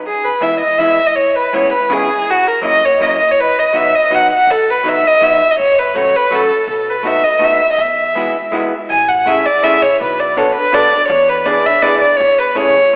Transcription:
0.07 0.26 G#4 medium
0.25 0.44 B4 medium
0.41 0.61 E3 medium
0.41 0.61 G#3 soft
0.41 0.61 B3 medium
0.41 0.61 E4 medium
0.41 0.60 E5 medium
0.61 0.80 D#5 medium
0.78 0.98 E3 medium
0.78 0.99 G#3 medium
0.78 0.99 B3 soft
0.78 0.99 E4 medium
0.78 1.08 E5 loud
1.07 1.17 D#5 medium
1.16 1.38 C#5 medium
1.36 1.56 B4 medium
1.53 1.72 E2 medium
1.53 1.72 G#3 medium
1.53 1.72 B3 medium
1.53 1.72 C#4 soft
1.53 1.73 E4 medium
1.53 1.73 C#5 medium
1.73 1.94 B4 medium
1.89 2.08 E2 medium
1.89 2.08 G#3 medium
1.89 2.09 B3 medium
1.89 2.09 C#4 medium
1.89 2.09 E4 medium
1.89 2.32 G#4 loud
2.30 2.49 F#4 medium
2.47 2.64 A#4 medium
2.61 2.81 F#3 medium
2.61 2.82 A#3 medium
2.61 2.82 C#4 soft
2.61 2.82 E4 medium
2.61 2.86 D#5 loud
2.85 3.02 C#5 medium
3.00 3.19 F#3 medium
3.00 3.19 A#3 medium
3.00 3.19 C#4 medium
3.00 3.20 E4 medium
3.00 3.07 D#5 medium
3.08 3.15 D#5 medium
3.17 3.33 D#5 loud
3.31 3.42 C#5 medium
3.40 3.61 B4 loud
3.59 3.78 D#5 medium
3.73 3.92 F#3 soft
3.73 3.93 B3 soft
3.73 3.93 D#4 soft
3.73 3.93 F#4 medium
3.73 3.97 E5 medium
3.95 4.16 D#5 medium
4.10 4.30 F#3 soft
4.10 4.30 B3 medium
4.10 4.30 D#4 soft
4.10 4.30 F#4 medium
4.15 4.32 F#5 loud
4.33 4.53 F#5 loud
4.47 4.95 B1 medium
4.47 4.72 A4 loud
4.71 4.90 B4 medium
4.83 5.03 F#3 soft
4.83 5.03 B3 soft
4.83 5.04 D#4 medium
4.83 5.04 F#4 medium
4.88 5.09 E5 medium
5.07 5.25 D#5 loud
5.21 5.40 F#3 medium
5.21 5.40 B3 soft
5.21 5.41 D#4 soft
5.21 5.41 F#4 medium
5.21 5.52 E5 loud
5.51 5.59 D#5 medium
5.59 6.07 F#1 medium
5.59 5.80 C#5 loud
5.79 5.98 B4 medium
5.94 6.13 F#3 medium
5.94 6.14 A3 medium
5.94 6.14 C#4 soft
5.94 6.14 F#4 medium
5.94 6.18 C#5 loud
6.16 6.37 B4 medium
6.31 6.50 F#3 medium
6.31 6.50 A3 soft
6.31 6.50 C#4 medium
6.31 6.51 F#4 medium
6.35 6.70 A4 loud
6.67 7.16 B1 medium
6.67 6.91 A4 medium
6.90 7.08 B4 medium
7.03 7.23 A3 medium
7.03 7.23 B3 soft
7.03 7.23 D#4 medium
7.03 7.24 F#4 medium
7.03 7.25 E5 medium
7.24 7.46 D#5 medium
7.39 7.60 A3 medium
7.39 7.60 B3 soft
7.39 7.60 D#4 soft
7.39 7.61 F#4 medium
7.44 7.71 E5 medium
7.72 7.83 D#5 medium
7.78 8.27 E2 medium
7.78 8.55 E5 medium
8.15 8.35 G#3 medium
8.15 8.35 B3 medium
8.15 8.36 E4 soft
8.15 8.36 F#4 medium
8.52 8.72 G#3 medium
8.52 8.72 B3 medium
8.52 8.73 E4 medium
8.52 8.73 F#4 medium
8.90 9.38 A1 medium
8.90 9.10 G#5 medium
9.09 9.29 F#5 medium
9.26 9.46 A3 medium
9.26 9.46 C#4 medium
9.26 9.46 E4 soft
9.26 9.47 G#4 medium
9.26 9.47 E5 medium
9.46 9.65 D5 medium
9.63 9.82 A3 medium
9.63 9.83 C#4 soft
9.63 9.83 E4 medium
9.63 9.83 G#4 medium
9.63 9.84 E5 loud
9.82 10.01 C#5 medium
10.01 10.49 B1 medium
10.01 10.21 B4 medium
10.20 10.39 D5 medium
10.37 10.56 B3 soft
10.37 10.56 D4 medium
10.37 10.56 F#4 medium
10.37 10.57 A4 medium
10.37 10.55 C#5 medium
10.56 10.76 B4 medium
10.72 10.92 B3 medium
10.72 10.92 D4 medium
10.72 10.92 F#4 medium
10.72 10.93 A4 medium
10.72 11.02 D5 loud
11.09 11.57 E2 loud
11.09 11.31 C#5 loud
11.29 11.48 B4 medium
11.46 11.65 B3 medium
11.46 11.65 D4 medium
11.46 11.65 E4 medium
11.46 11.66 G#4 medium
11.46 11.68 D5 medium
11.66 11.84 E5 medium
11.82 12.02 B3 medium
11.82 12.02 D4 soft
11.82 12.02 E4 soft
11.82 12.03 G#4 medium
11.82 12.00 D5 loud
12.01 12.18 D5 medium
12.17 12.57 E2 medium
12.17 12.40 C#5 loud
12.39 12.58 B4 medium
12.55 12.75 A3 medium
12.55 12.75 C#4 soft
12.55 12.75 E4 soft
12.55 12.76 G#4 medium
12.55 12.96 C#5 loud
12.77 12.93 A1 medium

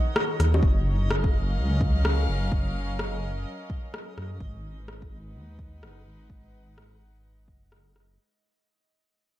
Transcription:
0.00 0.63 D#3 medium
0.00 1.87 D#4 medium
0.00 1.72 C#5 medium
0.00 8.20 D#5 medium
0.00 0.63 F#5 medium
0.16 cross-stick loud
0.39 0.61 D#2 medium
0.39 cross-stick medium
0.39 closed hi-hat soft
0.54 low bongo soft
0.63 1.59 F#1 medium
0.63 4.41 F#3 medium
0.63 kick loud
0.85 5.52 C#4 medium
1.09 4.41 A#4 medium
1.09 cross-stick loud
1.14 4.41 F5 medium
1.24 kick loud
1.58 2.04 C#2 medium
1.81 kick medium
2.05 2.27 C#2 medium
2.05 cross-stick loud
2.29 2.50 F#1 medium
2.52 3.45 F#1 medium
2.52 kick loud
2.99 cross-stick loud
3.70 kick medium
3.94 cross-stick medium
4.17 4.39 F#2 medium
4.17 cross-stick medium
4.40 5.37 G#1 loud
4.40 8.19 G#3 medium
4.40 kick loud
4.46 8.19 D#4 medium
4.57 8.19 B4 medium
4.88 cross-stick medium
5.02 kick medium
5.09 8.19 F#5 medium
5.35 5.84 D#2 medium
5.59 kick medium
5.82 6.05 F#1 loud
5.82 cross-stick medium
6.06 6.28 G#1 medium
6.30 7.50 G#1 medium
6.30 kick loud
6.78 cross-stick medium
7.48 8.18 F#1 medium
7.48 kick medium
7.72 cross-stick medium
7.96 cross-stick medium

